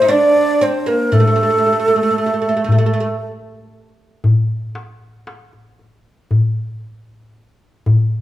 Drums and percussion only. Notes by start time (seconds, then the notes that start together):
0.09 darbuka tek
0.35 darbuka ka
0.61 darbuka ka
1.12 darbuka dum
2.68 darbuka dum
4.24 darbuka dum
4.75 darbuka tek
5.27 darbuka tek
5.53 darbuka ka
5.79 darbuka ka
6.31 darbuka dum
7.86 darbuka dum